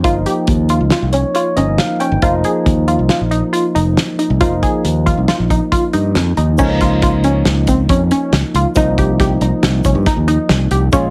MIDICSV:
0, 0, Header, 1, 5, 480
1, 0, Start_track
1, 0, Tempo, 435414
1, 49, Time_signature, 5, 2, 24, 8
1, 12239, End_track
2, 0, Start_track
2, 0, Title_t, "Synth arpeggio sound"
2, 0, Program_c, 0, 84
2, 47, Note_on_c, 0, 65, 92
2, 187, Note_off_c, 0, 65, 0
2, 289, Note_on_c, 0, 67, 68
2, 569, Note_off_c, 0, 67, 0
2, 770, Note_on_c, 0, 65, 68
2, 910, Note_off_c, 0, 65, 0
2, 1013, Note_on_c, 0, 65, 79
2, 1152, Note_off_c, 0, 65, 0
2, 1253, Note_on_c, 0, 61, 64
2, 1392, Note_off_c, 0, 61, 0
2, 1494, Note_on_c, 0, 65, 79
2, 1633, Note_off_c, 0, 65, 0
2, 1737, Note_on_c, 0, 61, 77
2, 2015, Note_off_c, 0, 61, 0
2, 2214, Note_on_c, 0, 61, 69
2, 2353, Note_off_c, 0, 61, 0
2, 2452, Note_on_c, 0, 65, 92
2, 2593, Note_off_c, 0, 65, 0
2, 2697, Note_on_c, 0, 68, 73
2, 2976, Note_off_c, 0, 68, 0
2, 3173, Note_on_c, 0, 65, 68
2, 3314, Note_off_c, 0, 65, 0
2, 3413, Note_on_c, 0, 65, 77
2, 3554, Note_off_c, 0, 65, 0
2, 3649, Note_on_c, 0, 63, 75
2, 3791, Note_off_c, 0, 63, 0
2, 3889, Note_on_c, 0, 65, 80
2, 4031, Note_off_c, 0, 65, 0
2, 4134, Note_on_c, 0, 63, 74
2, 4415, Note_off_c, 0, 63, 0
2, 4617, Note_on_c, 0, 63, 68
2, 4757, Note_off_c, 0, 63, 0
2, 4858, Note_on_c, 0, 65, 90
2, 4998, Note_off_c, 0, 65, 0
2, 5101, Note_on_c, 0, 68, 72
2, 5380, Note_off_c, 0, 68, 0
2, 5580, Note_on_c, 0, 65, 74
2, 5719, Note_off_c, 0, 65, 0
2, 5823, Note_on_c, 0, 65, 80
2, 5962, Note_off_c, 0, 65, 0
2, 6069, Note_on_c, 0, 63, 66
2, 6206, Note_off_c, 0, 63, 0
2, 6304, Note_on_c, 0, 65, 75
2, 6442, Note_off_c, 0, 65, 0
2, 6541, Note_on_c, 0, 63, 76
2, 6820, Note_off_c, 0, 63, 0
2, 7026, Note_on_c, 0, 63, 68
2, 7164, Note_off_c, 0, 63, 0
2, 7262, Note_on_c, 0, 61, 97
2, 7401, Note_off_c, 0, 61, 0
2, 7510, Note_on_c, 0, 65, 78
2, 7647, Note_off_c, 0, 65, 0
2, 7752, Note_on_c, 0, 65, 80
2, 7888, Note_off_c, 0, 65, 0
2, 7986, Note_on_c, 0, 61, 72
2, 8263, Note_off_c, 0, 61, 0
2, 8472, Note_on_c, 0, 60, 68
2, 8607, Note_off_c, 0, 60, 0
2, 8706, Note_on_c, 0, 61, 77
2, 8843, Note_off_c, 0, 61, 0
2, 8946, Note_on_c, 0, 61, 84
2, 9222, Note_off_c, 0, 61, 0
2, 9431, Note_on_c, 0, 65, 74
2, 9567, Note_off_c, 0, 65, 0
2, 9668, Note_on_c, 0, 63, 89
2, 9804, Note_off_c, 0, 63, 0
2, 9906, Note_on_c, 0, 67, 76
2, 10042, Note_off_c, 0, 67, 0
2, 10144, Note_on_c, 0, 67, 81
2, 10280, Note_off_c, 0, 67, 0
2, 10383, Note_on_c, 0, 63, 68
2, 10659, Note_off_c, 0, 63, 0
2, 10865, Note_on_c, 0, 61, 64
2, 11001, Note_off_c, 0, 61, 0
2, 11096, Note_on_c, 0, 63, 75
2, 11234, Note_off_c, 0, 63, 0
2, 11329, Note_on_c, 0, 63, 81
2, 11607, Note_off_c, 0, 63, 0
2, 11811, Note_on_c, 0, 67, 68
2, 11949, Note_off_c, 0, 67, 0
2, 12049, Note_on_c, 0, 61, 91
2, 12188, Note_off_c, 0, 61, 0
2, 12239, End_track
3, 0, Start_track
3, 0, Title_t, "Tine electric piano"
3, 0, Program_c, 1, 4
3, 33, Note_on_c, 1, 53, 67
3, 42, Note_on_c, 1, 58, 56
3, 52, Note_on_c, 1, 63, 70
3, 1241, Note_on_c, 1, 73, 59
3, 1469, Note_off_c, 1, 73, 0
3, 1482, Note_on_c, 1, 73, 58
3, 1691, Note_off_c, 1, 53, 0
3, 1695, Note_off_c, 1, 58, 0
3, 1700, Note_off_c, 1, 63, 0
3, 1710, Note_off_c, 1, 73, 0
3, 1719, Note_on_c, 1, 53, 53
3, 1724, Note_on_c, 1, 58, 49
3, 1726, Note_on_c, 1, 75, 66
3, 1730, Note_on_c, 1, 63, 58
3, 1953, Note_off_c, 1, 75, 0
3, 1965, Note_on_c, 1, 77, 60
3, 2193, Note_off_c, 1, 77, 0
3, 2204, Note_on_c, 1, 79, 61
3, 2432, Note_off_c, 1, 79, 0
3, 2436, Note_off_c, 1, 53, 0
3, 2443, Note_off_c, 1, 58, 0
3, 2450, Note_on_c, 1, 53, 72
3, 2453, Note_off_c, 1, 63, 0
3, 2457, Note_on_c, 1, 58, 56
3, 2464, Note_on_c, 1, 63, 73
3, 4812, Note_off_c, 1, 53, 0
3, 4816, Note_off_c, 1, 58, 0
3, 4820, Note_off_c, 1, 63, 0
3, 4850, Note_on_c, 1, 53, 61
3, 4860, Note_on_c, 1, 58, 61
3, 4871, Note_on_c, 1, 63, 74
3, 7212, Note_off_c, 1, 53, 0
3, 7217, Note_off_c, 1, 58, 0
3, 7223, Note_off_c, 1, 63, 0
3, 7251, Note_on_c, 1, 53, 68
3, 7257, Note_on_c, 1, 58, 67
3, 7268, Note_on_c, 1, 63, 79
3, 9608, Note_off_c, 1, 53, 0
3, 9611, Note_off_c, 1, 58, 0
3, 9617, Note_off_c, 1, 63, 0
3, 9648, Note_on_c, 1, 53, 74
3, 9659, Note_on_c, 1, 58, 63
3, 9666, Note_on_c, 1, 63, 77
3, 11999, Note_off_c, 1, 53, 0
3, 12004, Note_off_c, 1, 58, 0
3, 12008, Note_off_c, 1, 63, 0
3, 12040, Note_on_c, 1, 56, 69
3, 12051, Note_on_c, 1, 61, 64
3, 12059, Note_on_c, 1, 65, 78
3, 12239, Note_off_c, 1, 56, 0
3, 12239, Note_off_c, 1, 61, 0
3, 12239, Note_off_c, 1, 65, 0
3, 12239, End_track
4, 0, Start_track
4, 0, Title_t, "Fingered electric bass"
4, 0, Program_c, 2, 33
4, 49, Note_on_c, 2, 31, 78
4, 268, Note_off_c, 2, 31, 0
4, 530, Note_on_c, 2, 39, 85
4, 858, Note_off_c, 2, 39, 0
4, 888, Note_on_c, 2, 37, 77
4, 999, Note_off_c, 2, 37, 0
4, 1127, Note_on_c, 2, 36, 78
4, 1348, Note_off_c, 2, 36, 0
4, 1730, Note_on_c, 2, 31, 72
4, 1950, Note_off_c, 2, 31, 0
4, 2333, Note_on_c, 2, 31, 91
4, 2443, Note_off_c, 2, 31, 0
4, 2451, Note_on_c, 2, 29, 80
4, 2672, Note_off_c, 2, 29, 0
4, 2932, Note_on_c, 2, 39, 81
4, 3262, Note_off_c, 2, 39, 0
4, 3295, Note_on_c, 2, 36, 69
4, 3405, Note_off_c, 2, 36, 0
4, 3539, Note_on_c, 2, 34, 78
4, 3757, Note_off_c, 2, 34, 0
4, 4140, Note_on_c, 2, 29, 74
4, 4358, Note_off_c, 2, 29, 0
4, 4740, Note_on_c, 2, 36, 85
4, 4849, Note_off_c, 2, 36, 0
4, 4860, Note_on_c, 2, 29, 74
4, 5078, Note_off_c, 2, 29, 0
4, 5342, Note_on_c, 2, 39, 81
4, 5669, Note_off_c, 2, 39, 0
4, 5704, Note_on_c, 2, 36, 71
4, 5812, Note_off_c, 2, 36, 0
4, 5948, Note_on_c, 2, 34, 80
4, 6163, Note_off_c, 2, 34, 0
4, 6548, Note_on_c, 2, 43, 64
4, 6761, Note_off_c, 2, 43, 0
4, 6784, Note_on_c, 2, 41, 73
4, 6999, Note_off_c, 2, 41, 0
4, 7025, Note_on_c, 2, 39, 75
4, 7239, Note_off_c, 2, 39, 0
4, 8224, Note_on_c, 2, 37, 80
4, 8659, Note_off_c, 2, 37, 0
4, 8701, Note_on_c, 2, 41, 87
4, 8918, Note_off_c, 2, 41, 0
4, 9175, Note_on_c, 2, 37, 85
4, 9286, Note_off_c, 2, 37, 0
4, 9418, Note_on_c, 2, 37, 86
4, 9527, Note_off_c, 2, 37, 0
4, 9658, Note_on_c, 2, 36, 90
4, 10331, Note_off_c, 2, 36, 0
4, 10373, Note_on_c, 2, 36, 86
4, 10482, Note_off_c, 2, 36, 0
4, 10612, Note_on_c, 2, 36, 88
4, 10831, Note_off_c, 2, 36, 0
4, 10857, Note_on_c, 2, 36, 78
4, 10960, Note_off_c, 2, 36, 0
4, 10967, Note_on_c, 2, 43, 86
4, 11078, Note_off_c, 2, 43, 0
4, 11208, Note_on_c, 2, 39, 68
4, 11427, Note_off_c, 2, 39, 0
4, 11568, Note_on_c, 2, 36, 88
4, 11786, Note_off_c, 2, 36, 0
4, 11805, Note_on_c, 2, 36, 89
4, 12024, Note_off_c, 2, 36, 0
4, 12046, Note_on_c, 2, 34, 82
4, 12239, Note_off_c, 2, 34, 0
4, 12239, End_track
5, 0, Start_track
5, 0, Title_t, "Drums"
5, 47, Note_on_c, 9, 36, 95
5, 49, Note_on_c, 9, 42, 69
5, 157, Note_off_c, 9, 36, 0
5, 159, Note_off_c, 9, 42, 0
5, 287, Note_on_c, 9, 42, 58
5, 397, Note_off_c, 9, 42, 0
5, 520, Note_on_c, 9, 42, 73
5, 526, Note_on_c, 9, 36, 88
5, 631, Note_off_c, 9, 42, 0
5, 637, Note_off_c, 9, 36, 0
5, 760, Note_on_c, 9, 42, 57
5, 870, Note_off_c, 9, 42, 0
5, 997, Note_on_c, 9, 38, 104
5, 997, Note_on_c, 9, 42, 71
5, 1107, Note_off_c, 9, 38, 0
5, 1107, Note_off_c, 9, 42, 0
5, 1242, Note_on_c, 9, 42, 60
5, 1352, Note_off_c, 9, 42, 0
5, 1485, Note_on_c, 9, 42, 68
5, 1596, Note_off_c, 9, 42, 0
5, 1727, Note_on_c, 9, 42, 52
5, 1837, Note_off_c, 9, 42, 0
5, 1966, Note_on_c, 9, 38, 96
5, 1966, Note_on_c, 9, 42, 71
5, 2076, Note_off_c, 9, 38, 0
5, 2076, Note_off_c, 9, 42, 0
5, 2207, Note_on_c, 9, 42, 50
5, 2318, Note_off_c, 9, 42, 0
5, 2449, Note_on_c, 9, 42, 75
5, 2452, Note_on_c, 9, 36, 99
5, 2559, Note_off_c, 9, 42, 0
5, 2562, Note_off_c, 9, 36, 0
5, 2690, Note_on_c, 9, 42, 50
5, 2800, Note_off_c, 9, 42, 0
5, 2934, Note_on_c, 9, 36, 80
5, 2935, Note_on_c, 9, 42, 65
5, 3044, Note_off_c, 9, 36, 0
5, 3045, Note_off_c, 9, 42, 0
5, 3174, Note_on_c, 9, 42, 51
5, 3284, Note_off_c, 9, 42, 0
5, 3408, Note_on_c, 9, 38, 97
5, 3408, Note_on_c, 9, 42, 69
5, 3519, Note_off_c, 9, 38, 0
5, 3519, Note_off_c, 9, 42, 0
5, 3654, Note_on_c, 9, 42, 53
5, 3764, Note_off_c, 9, 42, 0
5, 3897, Note_on_c, 9, 42, 72
5, 4008, Note_off_c, 9, 42, 0
5, 4141, Note_on_c, 9, 42, 51
5, 4252, Note_off_c, 9, 42, 0
5, 4380, Note_on_c, 9, 38, 98
5, 4380, Note_on_c, 9, 42, 70
5, 4491, Note_off_c, 9, 38, 0
5, 4491, Note_off_c, 9, 42, 0
5, 4619, Note_on_c, 9, 42, 54
5, 4730, Note_off_c, 9, 42, 0
5, 4857, Note_on_c, 9, 42, 73
5, 4861, Note_on_c, 9, 36, 90
5, 4968, Note_off_c, 9, 42, 0
5, 4971, Note_off_c, 9, 36, 0
5, 5101, Note_on_c, 9, 42, 57
5, 5102, Note_on_c, 9, 36, 72
5, 5212, Note_off_c, 9, 36, 0
5, 5212, Note_off_c, 9, 42, 0
5, 5343, Note_on_c, 9, 42, 69
5, 5453, Note_off_c, 9, 42, 0
5, 5585, Note_on_c, 9, 36, 59
5, 5585, Note_on_c, 9, 42, 59
5, 5695, Note_off_c, 9, 36, 0
5, 5695, Note_off_c, 9, 42, 0
5, 5823, Note_on_c, 9, 38, 108
5, 5823, Note_on_c, 9, 42, 71
5, 5933, Note_off_c, 9, 38, 0
5, 5933, Note_off_c, 9, 42, 0
5, 6067, Note_on_c, 9, 36, 65
5, 6069, Note_on_c, 9, 42, 60
5, 6177, Note_off_c, 9, 36, 0
5, 6179, Note_off_c, 9, 42, 0
5, 6306, Note_on_c, 9, 36, 86
5, 6308, Note_on_c, 9, 42, 72
5, 6416, Note_off_c, 9, 36, 0
5, 6418, Note_off_c, 9, 42, 0
5, 6540, Note_on_c, 9, 42, 47
5, 6650, Note_off_c, 9, 42, 0
5, 6783, Note_on_c, 9, 38, 89
5, 6783, Note_on_c, 9, 42, 71
5, 6893, Note_off_c, 9, 38, 0
5, 6893, Note_off_c, 9, 42, 0
5, 7024, Note_on_c, 9, 42, 51
5, 7134, Note_off_c, 9, 42, 0
5, 7259, Note_on_c, 9, 82, 62
5, 7265, Note_on_c, 9, 36, 92
5, 7265, Note_on_c, 9, 49, 86
5, 7369, Note_off_c, 9, 82, 0
5, 7375, Note_off_c, 9, 49, 0
5, 7376, Note_off_c, 9, 36, 0
5, 7504, Note_on_c, 9, 36, 72
5, 7504, Note_on_c, 9, 38, 33
5, 7504, Note_on_c, 9, 42, 54
5, 7614, Note_off_c, 9, 38, 0
5, 7614, Note_off_c, 9, 42, 0
5, 7615, Note_off_c, 9, 36, 0
5, 7740, Note_on_c, 9, 38, 33
5, 7740, Note_on_c, 9, 42, 75
5, 7744, Note_on_c, 9, 36, 94
5, 7850, Note_off_c, 9, 38, 0
5, 7850, Note_off_c, 9, 42, 0
5, 7854, Note_off_c, 9, 36, 0
5, 7979, Note_on_c, 9, 42, 58
5, 8089, Note_off_c, 9, 42, 0
5, 8218, Note_on_c, 9, 38, 99
5, 8218, Note_on_c, 9, 42, 76
5, 8328, Note_off_c, 9, 38, 0
5, 8328, Note_off_c, 9, 42, 0
5, 8456, Note_on_c, 9, 42, 63
5, 8461, Note_on_c, 9, 36, 67
5, 8461, Note_on_c, 9, 82, 39
5, 8567, Note_off_c, 9, 42, 0
5, 8571, Note_off_c, 9, 36, 0
5, 8571, Note_off_c, 9, 82, 0
5, 8700, Note_on_c, 9, 42, 76
5, 8702, Note_on_c, 9, 36, 93
5, 8810, Note_off_c, 9, 42, 0
5, 8812, Note_off_c, 9, 36, 0
5, 8941, Note_on_c, 9, 42, 55
5, 9051, Note_off_c, 9, 42, 0
5, 9180, Note_on_c, 9, 38, 104
5, 9180, Note_on_c, 9, 42, 80
5, 9290, Note_off_c, 9, 38, 0
5, 9290, Note_off_c, 9, 42, 0
5, 9421, Note_on_c, 9, 42, 62
5, 9531, Note_off_c, 9, 42, 0
5, 9653, Note_on_c, 9, 82, 48
5, 9654, Note_on_c, 9, 42, 77
5, 9659, Note_on_c, 9, 36, 94
5, 9763, Note_off_c, 9, 82, 0
5, 9764, Note_off_c, 9, 42, 0
5, 9769, Note_off_c, 9, 36, 0
5, 9899, Note_on_c, 9, 36, 72
5, 9901, Note_on_c, 9, 42, 55
5, 10009, Note_off_c, 9, 36, 0
5, 10011, Note_off_c, 9, 42, 0
5, 10139, Note_on_c, 9, 36, 90
5, 10139, Note_on_c, 9, 38, 31
5, 10139, Note_on_c, 9, 42, 76
5, 10249, Note_off_c, 9, 36, 0
5, 10249, Note_off_c, 9, 38, 0
5, 10249, Note_off_c, 9, 42, 0
5, 10375, Note_on_c, 9, 42, 55
5, 10486, Note_off_c, 9, 42, 0
5, 10616, Note_on_c, 9, 38, 114
5, 10616, Note_on_c, 9, 42, 80
5, 10726, Note_off_c, 9, 38, 0
5, 10726, Note_off_c, 9, 42, 0
5, 10850, Note_on_c, 9, 82, 40
5, 10856, Note_on_c, 9, 36, 72
5, 10858, Note_on_c, 9, 42, 57
5, 10960, Note_off_c, 9, 82, 0
5, 10966, Note_off_c, 9, 36, 0
5, 10968, Note_off_c, 9, 42, 0
5, 11093, Note_on_c, 9, 38, 33
5, 11093, Note_on_c, 9, 42, 72
5, 11094, Note_on_c, 9, 36, 91
5, 11203, Note_off_c, 9, 38, 0
5, 11203, Note_off_c, 9, 42, 0
5, 11205, Note_off_c, 9, 36, 0
5, 11331, Note_on_c, 9, 42, 56
5, 11441, Note_off_c, 9, 42, 0
5, 11568, Note_on_c, 9, 38, 101
5, 11568, Note_on_c, 9, 42, 72
5, 11678, Note_off_c, 9, 38, 0
5, 11678, Note_off_c, 9, 42, 0
5, 11806, Note_on_c, 9, 42, 63
5, 11916, Note_off_c, 9, 42, 0
5, 12045, Note_on_c, 9, 42, 73
5, 12046, Note_on_c, 9, 36, 108
5, 12048, Note_on_c, 9, 82, 52
5, 12155, Note_off_c, 9, 42, 0
5, 12157, Note_off_c, 9, 36, 0
5, 12159, Note_off_c, 9, 82, 0
5, 12239, End_track
0, 0, End_of_file